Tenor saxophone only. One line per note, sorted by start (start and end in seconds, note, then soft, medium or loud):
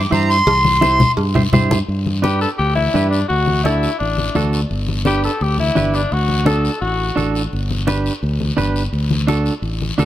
2.23 2.40 G4 medium
2.41 2.49 A4 medium
2.58 2.75 G4 loud
2.75 3.09 E4 medium
3.10 3.27 D4 medium
3.28 3.62 F#4 medium
3.63 3.97 E4 medium
3.99 4.49 D4 medium
5.06 5.22 G4 medium
5.25 5.44 A4 medium
5.42 5.59 G4 medium
5.59 5.96 E4 medium
5.94 6.14 D4 medium
6.12 6.46 F#4 medium
6.47 6.79 A4 medium
6.81 7.31 F#4 medium